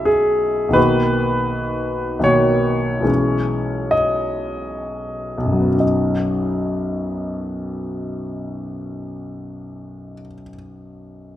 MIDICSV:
0, 0, Header, 1, 2, 480
1, 0, Start_track
1, 0, Key_signature, 5, "major"
1, 0, Tempo, 1360544
1, 268, Time_signature, 3, 2, 24, 8
1, 268, Tempo, 1500000
1, 748, Tempo, 1671309
1, 1228, Tempo, 1880878
1, 1708, Tempo, 1724138
1, 2188, Tempo, 1639344
1, 3309, End_track
2, 0, Start_track
2, 0, Title_t, "Grand piano"
2, 0, Program_c, 0, 0
2, 0, Control_c, 0, 64, 127
2, 0, Note_on_c, 0, 35, 34
2, 0, Note_on_c, 0, 52, 29
2, 0, Note_on_c, 0, 56, 27
2, 0, Note_on_c, 0, 61, 27
2, 0, Note_on_c, 0, 64, 27
2, 0, Note_on_c, 0, 75, 60
2, 0, Note_on_c, 0, 76, 62
2, 19, Note_on_c, 0, 68, 58
2, 236, Note_off_c, 0, 35, 0
2, 242, Note_on_c, 0, 35, 39
2, 243, Note_off_c, 0, 52, 0
2, 245, Note_off_c, 0, 56, 0
2, 248, Note_off_c, 0, 61, 0
2, 249, Note_on_c, 0, 51, 32
2, 250, Note_off_c, 0, 64, 0
2, 253, Note_on_c, 0, 58, 33
2, 259, Note_on_c, 0, 63, 34
2, 259, Note_on_c, 0, 71, 69
2, 262, Note_on_c, 0, 66, 32
2, 264, Note_off_c, 0, 68, 0
2, 276, Control_c, 0, 64, 0
2, 277, Note_off_c, 0, 76, 0
2, 279, Note_off_c, 0, 75, 0
2, 337, Control_c, 0, 64, 127
2, 721, Note_off_c, 0, 35, 0
2, 724, Note_off_c, 0, 51, 0
2, 726, Note_on_c, 0, 35, 39
2, 729, Note_off_c, 0, 58, 0
2, 729, Note_on_c, 0, 51, 35
2, 731, Note_off_c, 0, 63, 0
2, 733, Note_off_c, 0, 66, 0
2, 734, Note_on_c, 0, 58, 31
2, 739, Note_on_c, 0, 63, 33
2, 741, Note_on_c, 0, 66, 32
2, 741, Note_on_c, 0, 73, 69
2, 744, Note_off_c, 0, 71, 0
2, 957, Note_off_c, 0, 35, 0
2, 961, Note_on_c, 0, 35, 36
2, 964, Note_on_c, 0, 52, 31
2, 966, Note_off_c, 0, 51, 0
2, 969, Note_off_c, 0, 58, 0
2, 969, Note_on_c, 0, 56, 32
2, 971, Note_off_c, 0, 63, 0
2, 972, Note_off_c, 0, 66, 0
2, 972, Note_on_c, 0, 61, 34
2, 976, Note_on_c, 0, 68, 32
2, 989, Control_c, 0, 64, 0
2, 1064, Control_c, 0, 64, 127
2, 1222, Note_on_c, 0, 75, 66
2, 1225, Note_off_c, 0, 73, 0
2, 1593, Note_off_c, 0, 35, 0
2, 1597, Note_on_c, 0, 35, 34
2, 1616, Note_on_c, 0, 42, 29
2, 1635, Note_on_c, 0, 54, 30
2, 1652, Note_on_c, 0, 59, 30
2, 1670, Note_off_c, 0, 61, 0
2, 1674, Note_on_c, 0, 61, 30
2, 1690, Note_off_c, 0, 52, 0
2, 1691, Note_on_c, 0, 63, 27
2, 1692, Note_off_c, 0, 56, 0
2, 1695, Note_off_c, 0, 68, 0
2, 1701, Note_off_c, 0, 75, 0
2, 1705, Note_on_c, 0, 75, 41
2, 1715, Control_c, 0, 64, 0
2, 1796, Control_c, 0, 64, 127
2, 2944, Note_off_c, 0, 35, 0
2, 2966, Note_off_c, 0, 42, 0
2, 2987, Note_off_c, 0, 54, 0
2, 3008, Note_off_c, 0, 59, 0
2, 3033, Note_off_c, 0, 61, 0
2, 3052, Note_off_c, 0, 63, 0
2, 3068, Note_off_c, 0, 75, 0
2, 3309, End_track
0, 0, End_of_file